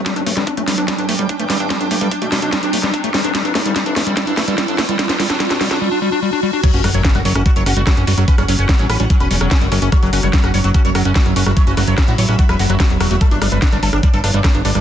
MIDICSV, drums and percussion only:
0, 0, Header, 1, 2, 480
1, 0, Start_track
1, 0, Tempo, 410959
1, 70, Time_signature, 4, 2, 24, 8
1, 17293, End_track
2, 0, Start_track
2, 0, Title_t, "Drums"
2, 70, Note_on_c, 9, 36, 115
2, 70, Note_on_c, 9, 38, 50
2, 70, Note_on_c, 9, 42, 63
2, 186, Note_off_c, 9, 36, 0
2, 187, Note_off_c, 9, 38, 0
2, 187, Note_off_c, 9, 42, 0
2, 190, Note_on_c, 9, 42, 36
2, 306, Note_off_c, 9, 42, 0
2, 310, Note_on_c, 9, 46, 110
2, 426, Note_off_c, 9, 46, 0
2, 430, Note_on_c, 9, 38, 44
2, 430, Note_on_c, 9, 42, 38
2, 546, Note_off_c, 9, 38, 0
2, 546, Note_off_c, 9, 42, 0
2, 550, Note_on_c, 9, 36, 123
2, 550, Note_on_c, 9, 42, 64
2, 667, Note_off_c, 9, 36, 0
2, 667, Note_off_c, 9, 42, 0
2, 670, Note_on_c, 9, 42, 38
2, 787, Note_off_c, 9, 42, 0
2, 790, Note_on_c, 9, 38, 50
2, 790, Note_on_c, 9, 46, 101
2, 906, Note_off_c, 9, 38, 0
2, 906, Note_off_c, 9, 46, 0
2, 910, Note_on_c, 9, 42, 39
2, 1026, Note_off_c, 9, 42, 0
2, 1029, Note_on_c, 9, 38, 52
2, 1029, Note_on_c, 9, 42, 61
2, 1030, Note_on_c, 9, 36, 121
2, 1146, Note_off_c, 9, 38, 0
2, 1146, Note_off_c, 9, 42, 0
2, 1147, Note_off_c, 9, 36, 0
2, 1150, Note_on_c, 9, 42, 38
2, 1266, Note_off_c, 9, 42, 0
2, 1270, Note_on_c, 9, 46, 105
2, 1387, Note_off_c, 9, 46, 0
2, 1390, Note_on_c, 9, 42, 37
2, 1506, Note_off_c, 9, 42, 0
2, 1510, Note_on_c, 9, 36, 120
2, 1510, Note_on_c, 9, 42, 64
2, 1626, Note_off_c, 9, 42, 0
2, 1627, Note_off_c, 9, 36, 0
2, 1629, Note_on_c, 9, 42, 38
2, 1746, Note_off_c, 9, 42, 0
2, 1749, Note_on_c, 9, 38, 59
2, 1749, Note_on_c, 9, 46, 107
2, 1866, Note_off_c, 9, 38, 0
2, 1866, Note_off_c, 9, 46, 0
2, 1870, Note_on_c, 9, 42, 39
2, 1986, Note_off_c, 9, 42, 0
2, 1989, Note_on_c, 9, 38, 59
2, 1989, Note_on_c, 9, 42, 65
2, 1990, Note_on_c, 9, 36, 115
2, 2106, Note_off_c, 9, 38, 0
2, 2106, Note_off_c, 9, 42, 0
2, 2107, Note_off_c, 9, 36, 0
2, 2110, Note_on_c, 9, 42, 37
2, 2226, Note_off_c, 9, 42, 0
2, 2230, Note_on_c, 9, 46, 105
2, 2346, Note_off_c, 9, 46, 0
2, 2350, Note_on_c, 9, 42, 40
2, 2466, Note_off_c, 9, 42, 0
2, 2470, Note_on_c, 9, 36, 114
2, 2470, Note_on_c, 9, 42, 66
2, 2587, Note_off_c, 9, 36, 0
2, 2587, Note_off_c, 9, 42, 0
2, 2590, Note_on_c, 9, 42, 39
2, 2707, Note_off_c, 9, 42, 0
2, 2710, Note_on_c, 9, 38, 65
2, 2710, Note_on_c, 9, 46, 101
2, 2827, Note_off_c, 9, 38, 0
2, 2827, Note_off_c, 9, 46, 0
2, 2830, Note_on_c, 9, 42, 38
2, 2947, Note_off_c, 9, 42, 0
2, 2950, Note_on_c, 9, 36, 116
2, 2950, Note_on_c, 9, 38, 66
2, 2950, Note_on_c, 9, 42, 66
2, 3066, Note_off_c, 9, 38, 0
2, 3066, Note_off_c, 9, 42, 0
2, 3067, Note_off_c, 9, 36, 0
2, 3070, Note_on_c, 9, 42, 41
2, 3186, Note_off_c, 9, 42, 0
2, 3190, Note_on_c, 9, 46, 105
2, 3306, Note_off_c, 9, 46, 0
2, 3310, Note_on_c, 9, 38, 61
2, 3310, Note_on_c, 9, 42, 39
2, 3427, Note_off_c, 9, 38, 0
2, 3427, Note_off_c, 9, 42, 0
2, 3430, Note_on_c, 9, 36, 114
2, 3430, Note_on_c, 9, 42, 65
2, 3547, Note_off_c, 9, 36, 0
2, 3547, Note_off_c, 9, 42, 0
2, 3550, Note_on_c, 9, 42, 41
2, 3667, Note_off_c, 9, 42, 0
2, 3670, Note_on_c, 9, 38, 72
2, 3670, Note_on_c, 9, 46, 104
2, 3787, Note_off_c, 9, 38, 0
2, 3787, Note_off_c, 9, 46, 0
2, 3790, Note_on_c, 9, 42, 38
2, 3907, Note_off_c, 9, 42, 0
2, 3910, Note_on_c, 9, 36, 115
2, 3910, Note_on_c, 9, 38, 74
2, 3910, Note_on_c, 9, 42, 68
2, 4027, Note_off_c, 9, 36, 0
2, 4027, Note_off_c, 9, 38, 0
2, 4027, Note_off_c, 9, 42, 0
2, 4030, Note_on_c, 9, 42, 40
2, 4146, Note_off_c, 9, 42, 0
2, 4149, Note_on_c, 9, 38, 78
2, 4149, Note_on_c, 9, 46, 103
2, 4266, Note_off_c, 9, 38, 0
2, 4266, Note_off_c, 9, 46, 0
2, 4270, Note_on_c, 9, 42, 42
2, 4386, Note_off_c, 9, 42, 0
2, 4390, Note_on_c, 9, 36, 115
2, 4390, Note_on_c, 9, 38, 79
2, 4390, Note_on_c, 9, 42, 70
2, 4506, Note_off_c, 9, 38, 0
2, 4506, Note_off_c, 9, 42, 0
2, 4507, Note_off_c, 9, 36, 0
2, 4510, Note_on_c, 9, 42, 42
2, 4626, Note_off_c, 9, 42, 0
2, 4629, Note_on_c, 9, 38, 83
2, 4629, Note_on_c, 9, 46, 102
2, 4746, Note_off_c, 9, 38, 0
2, 4746, Note_off_c, 9, 46, 0
2, 4749, Note_on_c, 9, 42, 41
2, 4866, Note_off_c, 9, 42, 0
2, 4869, Note_on_c, 9, 38, 85
2, 4869, Note_on_c, 9, 42, 69
2, 4870, Note_on_c, 9, 36, 114
2, 4986, Note_off_c, 9, 38, 0
2, 4986, Note_off_c, 9, 42, 0
2, 4987, Note_off_c, 9, 36, 0
2, 4989, Note_on_c, 9, 42, 41
2, 5106, Note_off_c, 9, 42, 0
2, 5109, Note_on_c, 9, 38, 87
2, 5109, Note_on_c, 9, 46, 104
2, 5226, Note_off_c, 9, 38, 0
2, 5226, Note_off_c, 9, 46, 0
2, 5229, Note_on_c, 9, 42, 40
2, 5346, Note_off_c, 9, 42, 0
2, 5349, Note_on_c, 9, 38, 90
2, 5349, Note_on_c, 9, 42, 71
2, 5350, Note_on_c, 9, 36, 112
2, 5466, Note_off_c, 9, 38, 0
2, 5466, Note_off_c, 9, 42, 0
2, 5467, Note_off_c, 9, 36, 0
2, 5469, Note_on_c, 9, 42, 41
2, 5586, Note_off_c, 9, 42, 0
2, 5589, Note_on_c, 9, 38, 92
2, 5589, Note_on_c, 9, 46, 104
2, 5706, Note_off_c, 9, 38, 0
2, 5706, Note_off_c, 9, 46, 0
2, 5709, Note_on_c, 9, 42, 40
2, 5826, Note_off_c, 9, 42, 0
2, 5830, Note_on_c, 9, 36, 117
2, 5830, Note_on_c, 9, 38, 95
2, 5830, Note_on_c, 9, 42, 69
2, 5946, Note_off_c, 9, 38, 0
2, 5946, Note_off_c, 9, 42, 0
2, 5947, Note_off_c, 9, 36, 0
2, 5949, Note_on_c, 9, 38, 78
2, 5949, Note_on_c, 9, 42, 42
2, 6066, Note_off_c, 9, 38, 0
2, 6066, Note_off_c, 9, 42, 0
2, 6069, Note_on_c, 9, 38, 99
2, 6069, Note_on_c, 9, 46, 104
2, 6186, Note_off_c, 9, 38, 0
2, 6186, Note_off_c, 9, 46, 0
2, 6189, Note_on_c, 9, 38, 86
2, 6189, Note_on_c, 9, 42, 42
2, 6306, Note_off_c, 9, 38, 0
2, 6306, Note_off_c, 9, 42, 0
2, 6310, Note_on_c, 9, 36, 120
2, 6310, Note_on_c, 9, 38, 97
2, 6310, Note_on_c, 9, 42, 71
2, 6426, Note_off_c, 9, 36, 0
2, 6426, Note_off_c, 9, 38, 0
2, 6426, Note_off_c, 9, 42, 0
2, 6429, Note_on_c, 9, 38, 87
2, 6429, Note_on_c, 9, 42, 44
2, 6546, Note_off_c, 9, 38, 0
2, 6546, Note_off_c, 9, 42, 0
2, 6549, Note_on_c, 9, 38, 100
2, 6549, Note_on_c, 9, 46, 102
2, 6666, Note_off_c, 9, 38, 0
2, 6666, Note_off_c, 9, 46, 0
2, 6670, Note_on_c, 9, 38, 90
2, 6670, Note_on_c, 9, 42, 42
2, 6786, Note_off_c, 9, 38, 0
2, 6786, Note_off_c, 9, 42, 0
2, 7750, Note_on_c, 9, 36, 118
2, 7750, Note_on_c, 9, 37, 38
2, 7750, Note_on_c, 9, 42, 70
2, 7750, Note_on_c, 9, 49, 103
2, 7867, Note_off_c, 9, 36, 0
2, 7867, Note_off_c, 9, 37, 0
2, 7867, Note_off_c, 9, 42, 0
2, 7867, Note_off_c, 9, 49, 0
2, 7870, Note_on_c, 9, 42, 39
2, 7987, Note_off_c, 9, 42, 0
2, 7990, Note_on_c, 9, 37, 78
2, 7990, Note_on_c, 9, 46, 110
2, 8107, Note_off_c, 9, 37, 0
2, 8107, Note_off_c, 9, 46, 0
2, 8110, Note_on_c, 9, 42, 42
2, 8227, Note_off_c, 9, 42, 0
2, 8230, Note_on_c, 9, 36, 123
2, 8230, Note_on_c, 9, 38, 124
2, 8230, Note_on_c, 9, 42, 71
2, 8347, Note_off_c, 9, 36, 0
2, 8347, Note_off_c, 9, 38, 0
2, 8347, Note_off_c, 9, 42, 0
2, 8350, Note_on_c, 9, 37, 39
2, 8350, Note_on_c, 9, 42, 42
2, 8467, Note_off_c, 9, 37, 0
2, 8467, Note_off_c, 9, 42, 0
2, 8470, Note_on_c, 9, 46, 107
2, 8587, Note_off_c, 9, 46, 0
2, 8590, Note_on_c, 9, 37, 76
2, 8590, Note_on_c, 9, 42, 43
2, 8707, Note_off_c, 9, 37, 0
2, 8707, Note_off_c, 9, 42, 0
2, 8710, Note_on_c, 9, 36, 120
2, 8710, Note_on_c, 9, 42, 70
2, 8827, Note_off_c, 9, 36, 0
2, 8827, Note_off_c, 9, 42, 0
2, 8830, Note_on_c, 9, 42, 44
2, 8947, Note_off_c, 9, 42, 0
2, 8950, Note_on_c, 9, 37, 39
2, 8950, Note_on_c, 9, 46, 108
2, 9067, Note_off_c, 9, 37, 0
2, 9067, Note_off_c, 9, 46, 0
2, 9071, Note_on_c, 9, 42, 42
2, 9187, Note_off_c, 9, 42, 0
2, 9190, Note_on_c, 9, 36, 121
2, 9191, Note_on_c, 9, 37, 76
2, 9191, Note_on_c, 9, 38, 126
2, 9191, Note_on_c, 9, 42, 70
2, 9307, Note_off_c, 9, 36, 0
2, 9307, Note_off_c, 9, 37, 0
2, 9307, Note_off_c, 9, 38, 0
2, 9307, Note_off_c, 9, 42, 0
2, 9310, Note_on_c, 9, 42, 42
2, 9427, Note_off_c, 9, 42, 0
2, 9430, Note_on_c, 9, 46, 109
2, 9547, Note_off_c, 9, 46, 0
2, 9550, Note_on_c, 9, 37, 39
2, 9550, Note_on_c, 9, 42, 43
2, 9667, Note_off_c, 9, 37, 0
2, 9667, Note_off_c, 9, 42, 0
2, 9670, Note_on_c, 9, 36, 125
2, 9670, Note_on_c, 9, 42, 67
2, 9787, Note_off_c, 9, 36, 0
2, 9787, Note_off_c, 9, 42, 0
2, 9790, Note_on_c, 9, 37, 74
2, 9790, Note_on_c, 9, 42, 40
2, 9907, Note_off_c, 9, 37, 0
2, 9907, Note_off_c, 9, 42, 0
2, 9910, Note_on_c, 9, 46, 114
2, 10027, Note_off_c, 9, 46, 0
2, 10030, Note_on_c, 9, 42, 41
2, 10147, Note_off_c, 9, 42, 0
2, 10150, Note_on_c, 9, 36, 127
2, 10150, Note_on_c, 9, 37, 40
2, 10150, Note_on_c, 9, 38, 127
2, 10150, Note_on_c, 9, 42, 68
2, 10267, Note_off_c, 9, 36, 0
2, 10267, Note_off_c, 9, 37, 0
2, 10267, Note_off_c, 9, 38, 0
2, 10267, Note_off_c, 9, 42, 0
2, 10270, Note_on_c, 9, 42, 40
2, 10387, Note_off_c, 9, 42, 0
2, 10390, Note_on_c, 9, 37, 76
2, 10390, Note_on_c, 9, 46, 107
2, 10507, Note_off_c, 9, 37, 0
2, 10507, Note_off_c, 9, 46, 0
2, 10510, Note_on_c, 9, 42, 40
2, 10627, Note_off_c, 9, 42, 0
2, 10630, Note_on_c, 9, 36, 125
2, 10630, Note_on_c, 9, 42, 68
2, 10747, Note_off_c, 9, 36, 0
2, 10747, Note_off_c, 9, 42, 0
2, 10750, Note_on_c, 9, 37, 41
2, 10750, Note_on_c, 9, 42, 42
2, 10867, Note_off_c, 9, 37, 0
2, 10867, Note_off_c, 9, 42, 0
2, 10870, Note_on_c, 9, 46, 111
2, 10987, Note_off_c, 9, 46, 0
2, 10990, Note_on_c, 9, 37, 79
2, 10990, Note_on_c, 9, 42, 41
2, 11107, Note_off_c, 9, 37, 0
2, 11107, Note_off_c, 9, 42, 0
2, 11110, Note_on_c, 9, 36, 121
2, 11110, Note_on_c, 9, 38, 126
2, 11110, Note_on_c, 9, 42, 65
2, 11226, Note_off_c, 9, 38, 0
2, 11226, Note_off_c, 9, 42, 0
2, 11227, Note_off_c, 9, 36, 0
2, 11230, Note_on_c, 9, 42, 42
2, 11346, Note_off_c, 9, 42, 0
2, 11350, Note_on_c, 9, 37, 39
2, 11350, Note_on_c, 9, 46, 112
2, 11467, Note_off_c, 9, 37, 0
2, 11467, Note_off_c, 9, 46, 0
2, 11470, Note_on_c, 9, 42, 41
2, 11587, Note_off_c, 9, 42, 0
2, 11590, Note_on_c, 9, 36, 123
2, 11590, Note_on_c, 9, 37, 77
2, 11590, Note_on_c, 9, 42, 63
2, 11707, Note_off_c, 9, 36, 0
2, 11707, Note_off_c, 9, 37, 0
2, 11707, Note_off_c, 9, 42, 0
2, 11710, Note_on_c, 9, 42, 38
2, 11827, Note_off_c, 9, 42, 0
2, 11830, Note_on_c, 9, 46, 112
2, 11947, Note_off_c, 9, 46, 0
2, 11950, Note_on_c, 9, 37, 40
2, 11950, Note_on_c, 9, 42, 39
2, 12067, Note_off_c, 9, 37, 0
2, 12067, Note_off_c, 9, 42, 0
2, 12070, Note_on_c, 9, 36, 127
2, 12070, Note_on_c, 9, 38, 124
2, 12070, Note_on_c, 9, 42, 67
2, 12187, Note_off_c, 9, 36, 0
2, 12187, Note_off_c, 9, 38, 0
2, 12187, Note_off_c, 9, 42, 0
2, 12190, Note_on_c, 9, 37, 79
2, 12190, Note_on_c, 9, 42, 39
2, 12307, Note_off_c, 9, 37, 0
2, 12307, Note_off_c, 9, 42, 0
2, 12310, Note_on_c, 9, 46, 108
2, 12427, Note_off_c, 9, 46, 0
2, 12430, Note_on_c, 9, 42, 40
2, 12547, Note_off_c, 9, 42, 0
2, 12550, Note_on_c, 9, 36, 125
2, 12550, Note_on_c, 9, 37, 39
2, 12550, Note_on_c, 9, 42, 66
2, 12667, Note_off_c, 9, 36, 0
2, 12667, Note_off_c, 9, 37, 0
2, 12667, Note_off_c, 9, 42, 0
2, 12670, Note_on_c, 9, 42, 41
2, 12787, Note_off_c, 9, 42, 0
2, 12790, Note_on_c, 9, 37, 80
2, 12790, Note_on_c, 9, 46, 114
2, 12907, Note_off_c, 9, 37, 0
2, 12907, Note_off_c, 9, 46, 0
2, 12910, Note_on_c, 9, 42, 39
2, 13027, Note_off_c, 9, 42, 0
2, 13030, Note_on_c, 9, 36, 124
2, 13030, Note_on_c, 9, 38, 123
2, 13030, Note_on_c, 9, 42, 64
2, 13146, Note_off_c, 9, 38, 0
2, 13146, Note_off_c, 9, 42, 0
2, 13147, Note_off_c, 9, 36, 0
2, 13150, Note_on_c, 9, 37, 40
2, 13150, Note_on_c, 9, 42, 39
2, 13266, Note_off_c, 9, 37, 0
2, 13266, Note_off_c, 9, 42, 0
2, 13270, Note_on_c, 9, 46, 117
2, 13386, Note_off_c, 9, 46, 0
2, 13390, Note_on_c, 9, 37, 78
2, 13390, Note_on_c, 9, 42, 38
2, 13507, Note_off_c, 9, 37, 0
2, 13507, Note_off_c, 9, 42, 0
2, 13510, Note_on_c, 9, 36, 125
2, 13510, Note_on_c, 9, 42, 64
2, 13627, Note_off_c, 9, 36, 0
2, 13627, Note_off_c, 9, 42, 0
2, 13630, Note_on_c, 9, 42, 36
2, 13747, Note_off_c, 9, 42, 0
2, 13750, Note_on_c, 9, 37, 40
2, 13750, Note_on_c, 9, 46, 109
2, 13866, Note_off_c, 9, 37, 0
2, 13866, Note_off_c, 9, 46, 0
2, 13870, Note_on_c, 9, 42, 38
2, 13987, Note_off_c, 9, 42, 0
2, 13990, Note_on_c, 9, 36, 126
2, 13990, Note_on_c, 9, 37, 83
2, 13990, Note_on_c, 9, 38, 116
2, 13990, Note_on_c, 9, 42, 64
2, 14107, Note_off_c, 9, 36, 0
2, 14107, Note_off_c, 9, 37, 0
2, 14107, Note_off_c, 9, 38, 0
2, 14107, Note_off_c, 9, 42, 0
2, 14110, Note_on_c, 9, 42, 39
2, 14227, Note_off_c, 9, 42, 0
2, 14230, Note_on_c, 9, 46, 109
2, 14346, Note_off_c, 9, 46, 0
2, 14350, Note_on_c, 9, 37, 41
2, 14350, Note_on_c, 9, 42, 38
2, 14466, Note_off_c, 9, 37, 0
2, 14466, Note_off_c, 9, 42, 0
2, 14469, Note_on_c, 9, 42, 65
2, 14470, Note_on_c, 9, 36, 123
2, 14586, Note_off_c, 9, 42, 0
2, 14587, Note_off_c, 9, 36, 0
2, 14590, Note_on_c, 9, 37, 86
2, 14590, Note_on_c, 9, 42, 39
2, 14707, Note_off_c, 9, 37, 0
2, 14707, Note_off_c, 9, 42, 0
2, 14710, Note_on_c, 9, 46, 115
2, 14827, Note_off_c, 9, 46, 0
2, 14830, Note_on_c, 9, 42, 38
2, 14947, Note_off_c, 9, 42, 0
2, 14950, Note_on_c, 9, 36, 125
2, 14950, Note_on_c, 9, 37, 41
2, 14950, Note_on_c, 9, 38, 121
2, 14950, Note_on_c, 9, 42, 65
2, 15067, Note_off_c, 9, 36, 0
2, 15067, Note_off_c, 9, 37, 0
2, 15067, Note_off_c, 9, 38, 0
2, 15067, Note_off_c, 9, 42, 0
2, 15070, Note_on_c, 9, 42, 40
2, 15187, Note_off_c, 9, 42, 0
2, 15190, Note_on_c, 9, 37, 82
2, 15190, Note_on_c, 9, 46, 111
2, 15307, Note_off_c, 9, 37, 0
2, 15307, Note_off_c, 9, 46, 0
2, 15310, Note_on_c, 9, 42, 37
2, 15427, Note_off_c, 9, 42, 0
2, 15430, Note_on_c, 9, 36, 124
2, 15430, Note_on_c, 9, 37, 41
2, 15430, Note_on_c, 9, 42, 63
2, 15547, Note_off_c, 9, 36, 0
2, 15547, Note_off_c, 9, 37, 0
2, 15547, Note_off_c, 9, 42, 0
2, 15550, Note_on_c, 9, 42, 37
2, 15667, Note_off_c, 9, 42, 0
2, 15670, Note_on_c, 9, 37, 84
2, 15670, Note_on_c, 9, 46, 109
2, 15787, Note_off_c, 9, 37, 0
2, 15787, Note_off_c, 9, 46, 0
2, 15790, Note_on_c, 9, 42, 39
2, 15907, Note_off_c, 9, 42, 0
2, 15910, Note_on_c, 9, 36, 123
2, 15910, Note_on_c, 9, 38, 120
2, 15910, Note_on_c, 9, 42, 64
2, 16026, Note_off_c, 9, 36, 0
2, 16027, Note_off_c, 9, 38, 0
2, 16027, Note_off_c, 9, 42, 0
2, 16030, Note_on_c, 9, 37, 43
2, 16030, Note_on_c, 9, 42, 38
2, 16147, Note_off_c, 9, 37, 0
2, 16147, Note_off_c, 9, 42, 0
2, 16150, Note_on_c, 9, 46, 102
2, 16267, Note_off_c, 9, 46, 0
2, 16270, Note_on_c, 9, 37, 82
2, 16270, Note_on_c, 9, 42, 38
2, 16387, Note_off_c, 9, 37, 0
2, 16387, Note_off_c, 9, 42, 0
2, 16390, Note_on_c, 9, 36, 123
2, 16390, Note_on_c, 9, 42, 64
2, 16506, Note_off_c, 9, 36, 0
2, 16507, Note_off_c, 9, 42, 0
2, 16510, Note_on_c, 9, 42, 39
2, 16627, Note_off_c, 9, 42, 0
2, 16630, Note_on_c, 9, 37, 43
2, 16630, Note_on_c, 9, 46, 108
2, 16747, Note_off_c, 9, 37, 0
2, 16747, Note_off_c, 9, 46, 0
2, 16750, Note_on_c, 9, 42, 39
2, 16867, Note_off_c, 9, 42, 0
2, 16870, Note_on_c, 9, 36, 122
2, 16870, Note_on_c, 9, 37, 85
2, 16870, Note_on_c, 9, 38, 115
2, 16870, Note_on_c, 9, 42, 64
2, 16986, Note_off_c, 9, 36, 0
2, 16987, Note_off_c, 9, 37, 0
2, 16987, Note_off_c, 9, 38, 0
2, 16987, Note_off_c, 9, 42, 0
2, 16990, Note_on_c, 9, 42, 39
2, 17107, Note_off_c, 9, 42, 0
2, 17110, Note_on_c, 9, 46, 109
2, 17227, Note_off_c, 9, 46, 0
2, 17230, Note_on_c, 9, 37, 42
2, 17230, Note_on_c, 9, 42, 38
2, 17293, Note_off_c, 9, 37, 0
2, 17293, Note_off_c, 9, 42, 0
2, 17293, End_track
0, 0, End_of_file